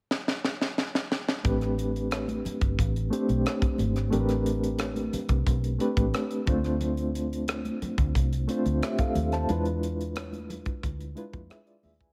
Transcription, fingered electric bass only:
1.45 2.41 A1 medium
2.45 muted fingered electric bass stroke soft
2.62 2.77 G1 medium
2.79 3.09 A1 medium
3.29 3.44 B1 medium
3.80 4.09 G#1 medium
4.13 5.09 A1 medium
5.13 muted fingered electric bass stroke soft
5.30 5.45 C2 medium
5.47 5.77 B1 medium
5.97 6.12 A1 medium
6.48 7.68 D2 medium
7.82 muted fingered electric bass stroke soft
7.98 8.13 D2 medium
8.15 8.45 C2 medium
8.66 8.81 D2 medium
9.16 9.46 D#2 medium
9.50 10.63 E2 medium
10.84 11.14 D2 medium
11.34 11.49 F2 medium
11.84 12.13 D#2 medium

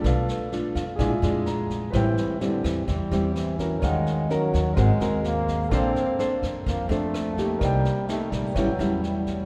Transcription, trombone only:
1.93 2.42 E3 medium
2.40 2.66 D3 medium
2.64 2.89 E3 medium
2.88 3.37 G3 medium
3.35 3.81 E3 medium
3.82 4.32 G#3 loud
4.30 4.78 F#3 loud
4.77 5.24 G#3 loud
5.24 5.73 A#3 loud
5.71 6.39 C4 loud
6.65 6.90 A#3 loud
6.89 7.61 A3 loud
7.60 8.07 G3 medium
8.08 8.33 A3 loud
8.31 8.55 G3 medium
8.56 9.05 F#3 medium
9.03 9.45 G3 medium

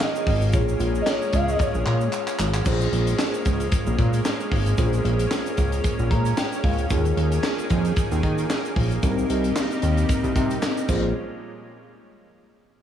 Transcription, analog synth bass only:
0.27 0.55 G#1 medium
0.54 0.76 A#1 loud
0.80 1.02 A#1 loud
1.33 1.55 C#2 medium
1.75 1.84 A#1 loud
1.86 2.08 A#2 medium
2.40 2.62 G#1 loud
2.66 2.88 A#1 loud
2.92 3.15 A#1 loud
3.46 3.68 C#2 medium
3.87 3.97 A#1 loud
3.99 4.21 A#2 loud
4.52 4.74 G#1 loud
4.78 5.00 A#1 loud
5.05 5.27 A#1 loud
5.58 5.80 C#2 loud
5.99 6.12 A#1 loud
6.11 6.33 A#2 loud
6.64 6.86 C#2 loud
6.91 7.13 D#2 loud
7.17 7.39 D#2 medium
7.70 7.92 F2 loud
8.12 8.21 D#2 loud
8.23 8.45 D#3 loud
8.76 8.99 A#1 medium
9.03 9.25 C2 loud
9.30 9.52 C2 medium
9.83 10.05 D#2 medium
10.24 10.34 C2 loud
10.36 10.58 C3 loud
10.89 11.13 A#1 loud

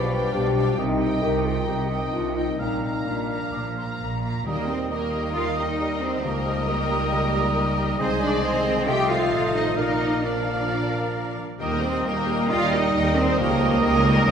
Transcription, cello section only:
0.00 0.28 B2 medium
0.34 0.73 B2 medium
0.78 1.17 C3 medium
1.22 1.61 C3 medium
1.67 2.07 C3 medium
2.13 2.54 C3 medium
2.60 3.01 A#2 medium
3.07 3.48 A#2 medium
3.54 3.95 A#2 soft
4.00 4.42 A#2 medium
4.46 4.67 A#3 medium
4.69 4.91 C4 medium
4.91 5.35 A#3 medium
5.35 5.43 F4 medium
5.58 6.01 D#4 medium
6.02 6.24 C4 medium
6.24 8.00 A#3 medium
7.99 8.07 C4 medium
8.21 8.43 D4 medium
8.43 8.86 C4 medium
8.87 9.09 G4 medium
9.09 9.54 F4 medium
9.55 9.76 D#4 medium
9.77 10.23 D#4 medium
10.24 11.37 D4 medium
11.60 11.81 A#3 medium
11.83 12.06 C4 medium
12.05 12.50 A#3 medium
12.50 12.72 F4 medium
12.72 13.16 D#4 medium
13.17 13.39 C4 medium
13.38 14.31 A#3 medium

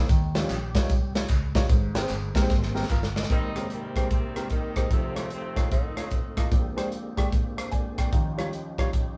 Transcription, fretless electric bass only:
0.10 0.44 D#2 loud
0.50 0.90 A#1 medium
0.90 1.24 C2 medium
1.29 1.64 C#2 medium
1.70 2.04 G#1 loud
2.10 2.32 G1 medium
2.35 2.47 A#1 medium
2.50 2.84 G#1 medium
2.90 3.24 G1 loud

